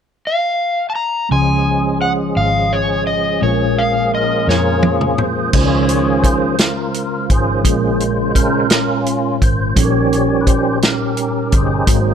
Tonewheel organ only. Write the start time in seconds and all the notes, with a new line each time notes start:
1.32 F3 G#3 C#4 G#4
3.42 A#3
4.13 C#4 F4 A#4
5.19 C5
5.54 D#3 F3 C#4 F4 G#4 C#5
6.22 C5
6.60 F4 A#4
7.30 D#3 F3 C#4 F4 G#4 C5
7.66 C#3 G#3 C5
8.35 C#4 F4 A#4
9.43 C5
9.69 C5
9.76 F3 G3 C#4 G4 C#5
10.41 B4
10.47 C5
10.83 C#4 G4 A#4
11.55 D#4 G#4 C5
11.88 F#3 A#3 C4